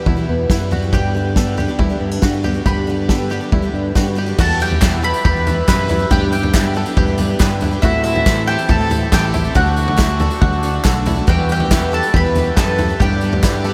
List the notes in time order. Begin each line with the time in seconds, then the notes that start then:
Already playing: E2 E3 G3 B3 E4 B5
0.00 E3
0.06 B2 E3 E4, kick, floor tom
0.17 E3 G3 B3 E4
0.29 E2 B3
0.50 E2 F#2 B2 E3 G3 B3 E4, kick, snare
0.60 E3 G3 B3 E4
0.71 E3 G3 B3 E4 F#4, floor tom
0.82 E3 G3 B3 E4
0.93 G2 D3 G3 B3 D4 G4 G5, kick, floor tom
1.14 D3 G3 B3 D4 G4
1.36 G2 D3 G3 B3 D4 G4 A4, kick, snare
1.57 G3 B3 D4 G4, floor tom
1.68 G3 B3 D4 G4
1.79 G2 G3 E4, kick, floor tom
1.90 G3 B3 D4 G4
2.00 G2 B3
2.11 D4
2.22 G2 D3 G3 B3 D4 F#4 G4, kick, snare
2.33 G3 B3 D4 G4
2.44 G3 B3 D4 G4, floor tom
2.54 G3 B3 D4 G4
2.66 G2 D3 G3 B3 D4 G4 B5, kick, floor tom
2.87 D3 G3 B3 D4 G4
3.09 G2 D3 G3 B3 D4 G4 A4, kick, snare
3.30 G3 B3 D4 G4
3.41 G3 B3 D4 G4
3.52 G2 G3 E4, kick, floor tom
3.62 G3 B3 D4 G4
3.73 G2 D4
3.95 G2 D3 G3 B3 D4 F#4 G4, kick, snare
4.06 G3 B3 D4 G4
4.15 F#2 G3 B3 D4 G4
4.26 G3 B3 D4 G4
4.37 E2 B2 E3 G3 E4 F#4 G4 A4 B4 E5 A5 B5, kick, floor tom, crash, tambourine
4.60 E3 G3 E4 G4 G5, tambourine
4.71 floor tom, tambourine
4.82 E2 B2 E3 G3 E4 G4, kick, snare, clap, tambourine
5.03 E3 G3 E4 G4 A4 B4 B5, tambourine
5.14 E3 G3 E4 G4, tambourine
5.25 E2 G4 B4 B5, kick, floor tom, tambourine
5.36 tambourine
5.47 E3 G3 E4 G4, floor tom, tambourine
5.68 E2 F#2 B2 E3 G3 E4 G4 B4 B5, kick, snare, clap, tambourine
5.79 tambourine
5.88 E3 G3 E4 G4, floor tom, tambourine
5.99 E3 G3 E4 G4, tambourine
6.10 G2 D3 G3 B3 D4 G4 D5 G5, kick, floor tom, tambourine
6.32 G3 B3 D4 G4 G5, tambourine
6.43 floor tom, tambourine
6.53 G2 D3 G3 B3 D4 E4 G4, kick, snare, clap, tambourine
6.75 G3 B3 D4 G4 A4, tambourine
6.86 G3 B3 D4 G4, tambourine
6.97 G2 G4, kick, floor tom, tambourine
7.07 tambourine
7.18 G3 B3 D4 G4, floor tom, tambourine
7.39 G2 D3 G3 B3 D4 G4 B4, kick, snare, clap, tambourine
7.50 tambourine
7.61 G3 B3 D4 E4 G4, floor tom, tambourine
7.71 G3 B3 D4 G4, tambourine
7.82 A2 E3 C4 E4 F#4 A4 C5 E5 A5, kick, floor tom, tambourine
8.04 E3 C4 E4 A4 E5, tambourine
8.15 floor tom, tambourine
8.26 A2 E3 C4 E4 A4, kick, snare, clap, tambourine
8.37 tambourine
8.47 E3 C4 E4 G4 A4 G5, tambourine
8.59 C4 E4 A4, tambourine
8.69 A2 G4 A4 A5, kick, floor tom, tambourine
8.81 tambourine
8.90 E3 C4 E4 A4, floor tom, tambourine
9.12 A1 A2 E3 C4 E4 G4 A4 G5, kick, snare, clap, tambourine
9.33 E3 C4 E4 A4, floor tom, tambourine
9.44 C4 E4 A4, tambourine
9.55 D2 D3 A3 D4 F#4 A4 D5 F#5, kick, floor tom, tambourine
9.66 tambourine
9.76 D3 A3 D4 F#4, tambourine
9.88 floor tom
9.96 D3 A3 D4 E4 F#4, kick, snare, clap, tambourine
10.09 tambourine
10.19 D3 A3 D4 F#4 A4, floor tom, tambourine
10.30 A3 D4 F#4, tambourine
10.41 D2 F#4, kick, floor tom, tambourine
10.53 tambourine
10.63 D3 A3 D4 F#4, tambourine
10.74 tambourine
10.84 B1 D3 A3 D4 F#4 A4, kick, snare, clap, tambourine
11.05 D3 A3 D4 E4 F#4, floor tom, tambourine
11.16 A3 D4 F#4, tambourine
11.27 E2 B2 E3 G3 B3 E4 F#4 G4 B4 E5 G5 B5, kick, floor tom, tambourine
11.49 E3 G3 B3 G4 G5, tambourine
11.60 floor tom
11.70 E2 B2 E3 G3 B3 E4 G4 B4 E5, kick, snare, clap, tambourine
11.82 tambourine
11.92 E3 G3 B3 G4 A4 A5, tambourine
12.03 G3 B3 G4, tambourine
12.07 E3
12.14 E2 G3 B3 E4 G4 B4 E5 B5, kick, floor tom
12.25 tambourine
12.35 E3 G3 B3 G4, floor tom, tambourine
12.56 E2 F#2 B2 E3 G3 B3 E4 G4 A4 B4 E5 A5, kick, snare, clap, tambourine
12.68 tambourine
12.78 E3 G3 B3 E4 G4, floor tom, tambourine
12.89 E3 G3 B3 G4, tambourine
12.99 G1 G2 D3 G3 B3 D4 G4 B4 D5 G5, kick, floor tom, tambourine
13.21 G3 B3 D4 G4, tambourine
13.32 floor tom, tambourine
13.43 G2 D3 G3 B3 D4 E4 G4 B4 D5, kick, snare, clap, tambourine
13.53 tambourine
13.64 G3 B3 D4 G4 A4, tambourine